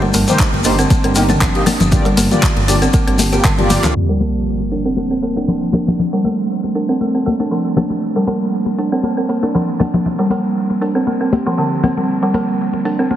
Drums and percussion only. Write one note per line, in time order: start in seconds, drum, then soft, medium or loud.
0.14 open hi-hat medium
0.14 muted conga soft
0.14 high conga medium
0.14 shekere medium
0.28 closed hi-hat soft
0.28 mid tom medium
0.28 shekere medium
0.39 kick loud
0.39 clap loud
0.39 closed hi-hat medium
0.39 shekere soft
0.54 muted conga soft
0.64 open hi-hat medium
0.64 shekere medium
0.79 closed hi-hat soft
0.79 shekere medium
0.90 kick loud
0.90 closed hi-hat medium
0.90 muted conga medium
0.90 shekere soft
1.04 closed hi-hat soft
1.15 open hi-hat medium
1.15 shekere medium
1.29 closed hi-hat soft
1.29 mid tom medium
1.29 muted conga soft
1.29 shekere soft
1.41 kick loud
1.41 clap loud
1.41 closed hi-hat medium
1.41 low conga medium
1.41 shekere soft
1.55 closed hi-hat soft
1.66 open hi-hat medium
1.66 high conga loud
1.66 low conga medium
1.66 shekere medium
1.80 closed hi-hat soft
1.80 muted conga medium
1.80 low conga loud
1.80 shekere soft
1.92 kick loud
1.92 closed hi-hat medium
1.92 low conga medium
1.92 shekere soft
2.06 closed hi-hat soft
2.17 open hi-hat loud
2.17 muted conga soft
2.17 high conga medium
2.17 shekere medium
2.31 closed hi-hat soft
2.31 mid tom medium
2.31 shekere medium
2.43 kick loud
2.43 clap loud
2.43 closed hi-hat medium
2.43 shekere soft
2.57 closed hi-hat soft
2.57 muted conga soft
2.68 open hi-hat medium
2.68 shekere loud
2.82 closed hi-hat soft
2.82 shekere medium
2.93 kick loud
2.93 closed hi-hat medium
2.93 muted conga medium
2.93 shekere soft
3.08 closed hi-hat soft
3.19 open hi-hat medium
3.19 high conga loud
3.19 shekere loud
3.33 closed hi-hat soft
3.33 muted conga soft
3.33 shekere medium
3.44 kick loud
3.44 clap medium
3.44 closed hi-hat medium
3.44 shekere soft
3.58 closed hi-hat soft
3.58 mid tom medium
3.70 open hi-hat medium
3.70 high conga loud
3.70 low conga medium
3.70 shekere medium
3.83 clap medium
3.83 closed hi-hat soft
3.83 mid tom medium
3.83 muted conga medium
3.83 shekere soft
4.20 open hi-hat medium
4.20 muted conga soft
4.20 high conga medium
4.60 muted conga soft
4.72 open hi-hat medium
4.97 muted conga medium
5.23 open hi-hat medium
5.37 muted conga soft
5.48 low conga medium
5.73 open hi-hat medium
5.73 high conga medium
5.73 low conga loud
5.88 muted conga medium
5.88 low conga loud
5.99 low conga medium
6.24 open hi-hat medium
6.24 muted conga soft
6.24 high conga medium
6.64 muted conga soft
6.75 open hi-hat medium
7.01 muted conga soft
7.26 open hi-hat medium
7.26 high conga loud
7.40 muted conga soft
7.76 open hi-hat medium
7.76 high conga loud
7.76 low conga loud
7.90 muted conga soft
8.27 open hi-hat medium
8.27 muted conga soft
8.27 high conga medium
8.66 muted conga soft
8.79 open hi-hat medium
9.03 muted conga soft
9.29 open hi-hat medium
9.43 muted conga soft
9.55 low conga medium
9.80 open hi-hat medium
9.80 high conga loud
9.80 low conga medium
9.94 muted conga soft
9.94 low conga loud
10.06 low conga medium
10.30 open hi-hat medium
10.30 muted conga soft
10.30 high conga medium
10.70 muted conga soft
10.82 open hi-hat medium
11.07 muted conga soft
11.33 open hi-hat medium
11.33 high conga loud
11.47 muted conga soft
11.83 open hi-hat medium
11.83 high conga loud
11.83 low conga medium
11.97 muted conga soft
12.34 open hi-hat medium
12.34 muted conga soft
12.34 high conga medium
12.73 muted conga soft
12.85 open hi-hat medium
13.11 muted conga soft